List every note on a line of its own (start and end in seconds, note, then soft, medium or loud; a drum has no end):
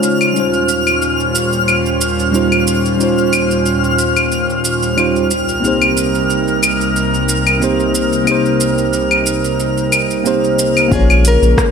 0.00 0.32 C#3 medium
0.00 0.32 G#3 medium
0.00 0.38 G#3 medium
0.00 0.34 C#4 medium
0.00 0.32 D#4 medium
0.00 0.36 D#4 medium
0.00 0.38 F4 medium
0.00 5.27 F4 medium
0.00 0.34 C5 medium
0.00 0.38 C#5 medium
0.00 10.92 F6 medium
0.00 shaker medium
0.21 claves medium
0.21 shaker soft
0.33 5.27 D#2 medium
0.33 5.27 A#2 medium
0.33 2.29 G3 medium
0.33 10.87 G3 medium
0.33 2.29 C#4 medium
0.33 5.27 C#4 medium
0.33 2.30 D#4 medium
0.33 5.27 C5 medium
0.33 shaker soft
0.38 2.31 F4 medium
0.38 2.32 C5 medium
0.54 shaker soft
0.69 shaker medium
0.87 claves medium
0.87 shaker soft
1.02 shaker soft
1.20 shaker soft
1.35 shaker medium
1.53 shaker soft
1.68 claves medium
1.68 shaker soft
1.86 shaker soft
2.01 shaker medium
2.19 shaker soft
2.32 2.48 G3 medium
2.32 2.48 C#4 medium
2.32 2.49 D#4 medium
2.32 2.49 F4 medium
2.32 2.50 C5 medium
2.32 shaker soft
2.52 claves medium
2.52 shaker soft
2.67 shaker medium
2.85 shaker soft
2.96 4.92 G3 medium
2.96 4.93 C#4 medium
2.96 4.94 D#4 medium
2.96 shaker soft
3.02 4.95 F4 medium
3.02 4.96 C5 medium
3.18 shaker soft
3.33 claves medium
3.33 shaker medium
3.51 shaker soft
3.66 shaker soft
3.84 shaker soft
3.99 shaker medium
4.17 claves medium
4.17 shaker soft
4.32 shaker soft
4.50 shaker soft
4.65 shaker medium
4.83 shaker soft
4.96 5.12 G3 medium
4.96 5.12 C#4 medium
4.96 5.12 D#4 medium
4.96 5.13 F4 medium
4.96 5.13 C5 medium
4.96 claves medium
4.96 shaker soft
5.16 shaker soft
5.31 10.88 C2 medium
5.31 10.88 C3 medium
5.31 10.88 D#4 medium
5.31 10.88 A#4 medium
5.31 shaker medium
5.49 shaker soft
5.60 7.56 A#3 medium
5.60 7.57 C4 medium
5.60 7.58 D#4 medium
5.60 shaker soft
5.66 7.59 G4 medium
5.66 7.60 C5 medium
5.82 claves medium
5.82 shaker soft
5.97 shaker medium
6.15 shaker soft
6.30 shaker soft
6.48 shaker soft
6.63 claves medium
6.63 shaker medium
6.81 shaker soft
6.96 shaker soft
7.14 shaker soft
7.29 shaker medium
7.47 claves medium
7.47 shaker soft
7.60 7.75 A#3 medium
7.60 7.76 C4 medium
7.60 7.77 D#4 medium
7.60 7.77 G4 medium
7.60 7.77 C5 medium
7.60 shaker soft
7.80 shaker soft
7.95 shaker medium
8.12 shaker soft
8.24 10.20 A#3 medium
8.24 10.21 C4 medium
8.24 10.22 D#4 medium
8.24 claves medium
8.24 shaker soft
8.29 10.23 G4 medium
8.29 10.24 C5 medium
8.46 shaker soft
8.61 shaker medium
8.78 shaker soft
8.93 shaker soft
9.11 claves medium
9.11 shaker soft
9.26 shaker medium
9.44 shaker soft
9.60 shaker soft
9.78 shaker soft
9.92 claves medium
9.92 shaker medium
10.11 shaker soft
10.24 10.39 A#3 medium
10.24 10.40 C4 medium
10.24 10.40 D#4 medium
10.24 10.41 G4 medium
10.24 10.41 C5 medium
10.24 shaker soft
10.44 shaker soft
10.59 shaker medium
10.77 claves medium
10.77 shaker soft
10.88 11.37 A#1 loud
10.88 11.71 C#3 medium
10.88 11.71 G#3 medium
10.88 11.71 A#3 medium
10.88 11.71 C#4 medium
10.88 11.71 F4 medium
10.88 kick loud
10.92 11.23 G#4 loud
10.92 11.71 G#4 medium
10.92 11.71 C#5 medium
10.92 shaker soft
11.10 claves medium
11.10 shaker soft
11.25 11.71 A#4 loud
11.25 closed hi-hat medium
11.25 shaker medium
11.42 11.54 A#1 medium
11.42 shaker soft
11.58 kick loud
11.58 cross-stick loud
11.58 shaker soft